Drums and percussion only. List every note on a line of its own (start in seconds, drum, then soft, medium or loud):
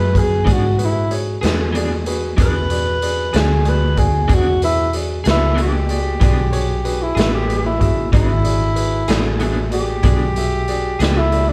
0.15 kick medium
0.15 closed hi-hat soft
0.47 kick medium
0.47 closed hi-hat medium
0.79 closed hi-hat soft
1.11 closed hi-hat soft
1.43 snare medium
1.43 closed hi-hat medium
1.75 closed hi-hat medium
2.06 closed hi-hat medium
2.38 kick medium
2.38 closed hi-hat medium
2.70 closed hi-hat medium
3.02 closed hi-hat medium
3.34 snare loud
3.34 closed hi-hat medium
3.65 closed hi-hat soft
3.97 kick medium
3.97 closed hi-hat medium
4.29 kick medium
4.29 closed hi-hat medium
4.62 closed hi-hat medium
4.93 closed hi-hat medium
5.25 snare medium
5.25 closed hi-hat medium
5.58 closed hi-hat soft
5.89 closed hi-hat soft
6.21 kick medium
6.21 closed hi-hat medium
6.53 closed hi-hat medium
6.85 closed hi-hat soft
7.17 snare loud
7.17 closed hi-hat medium
7.50 closed hi-hat soft
7.81 kick medium
7.81 closed hi-hat soft
8.13 kick loud
8.13 closed hi-hat medium
8.45 closed hi-hat medium
8.76 closed hi-hat medium
9.08 snare loud
9.08 closed hi-hat medium
9.40 closed hi-hat medium
9.72 closed hi-hat medium
10.03 kick loud
10.03 closed hi-hat medium
10.36 closed hi-hat medium
10.68 closed hi-hat soft
11.00 snare medium
11.00 closed hi-hat medium
11.32 closed hi-hat soft